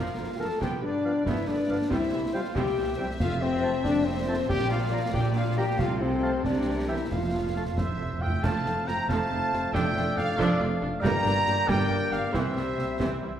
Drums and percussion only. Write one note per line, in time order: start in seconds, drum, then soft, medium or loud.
0.62 concert bass drum medium
0.62 snare medium
1.26 concert bass drum medium
1.26 snare medium
1.91 concert bass drum medium
1.91 snare medium
2.56 concert bass drum medium
2.56 snare medium
3.20 concert bass drum medium
3.20 snare medium
3.20 crash soft
3.85 concert bass drum medium
3.85 snare medium
4.50 concert bass drum medium
4.50 snare medium
5.14 concert bass drum medium
5.14 snare medium
5.79 concert bass drum medium
5.79 snare medium
6.45 concert bass drum medium
6.45 snare medium
7.12 concert bass drum medium
7.12 snare medium
7.78 concert bass drum medium
7.78 snare medium
8.44 concert bass drum medium
8.44 snare medium
8.44 crash medium
8.66 snare medium
8.88 snare medium
9.09 concert bass drum medium
9.09 snare medium
9.53 snare soft
9.75 concert bass drum medium
9.75 snare medium
9.97 snare medium
10.18 snare medium
10.40 concert bass drum medium
10.40 snare medium
11.05 concert bass drum medium
11.05 snare medium
11.05 crash soft
11.26 snare medium
11.47 snare medium
11.69 concert bass drum medium
11.69 snare medium
12.12 snare soft
12.34 concert bass drum medium
12.34 snare medium
12.57 snare medium
12.79 snare medium
13.00 concert bass drum medium
13.00 snare medium